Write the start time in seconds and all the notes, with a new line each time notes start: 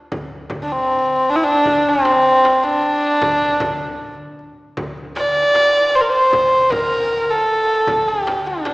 0.12 D2, darbuka dum, frame drum
0.50 D2, frame drum, darbuka dum
0.63 D4
0.72 C4
1.28 D4, darbuka ka
1.35 E4
1.43 D4
1.65 D2, darbuka dum, frame drum
1.85 C4, darbuka ka
2.05 darbuka tek, frame drum
2.44 darbuka tek, frame drum
2.63 D4
2.84 darbuka ka
3.03 darbuka ka
3.21 D2, frame drum, darbuka dum
3.60 D2, frame drum, darbuka dum
4.39 darbuka ka
4.77 D2, frame drum, darbuka dum
4.97 darbuka ka
5.16 D5, darbuka tek, frame drum
5.55 darbuka tek, frame drum
5.93 C5, darbuka ka
6.00 A#4
6.09 C5, darbuka ka
6.33 D2, darbuka dum, frame drum
6.70 D2 A#4, darbuka dum, frame drum
7.30 A4
7.50 darbuka ka
7.87 D2, frame drum, darbuka dum
8.08 G4, darbuka ka
8.27 darbuka tek, frame drum
8.46 D4
8.65 darbuka tek, frame drum